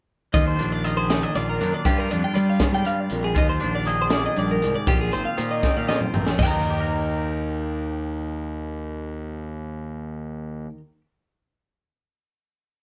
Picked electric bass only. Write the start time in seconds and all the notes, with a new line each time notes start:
0.34 D#2
0.61 A#1
1.36 A#1
1.62 F#2
1.86 G2
2.13 F2
2.37 G3
2.72 G3
3.11 A#1
3.36 D#2
3.63 A#1
4.38 A#1
4.64 C2
4.87 A#1
5.14 G#1
5.39 A#2
5.77 A#2
6.15 A#1
6.39 D#2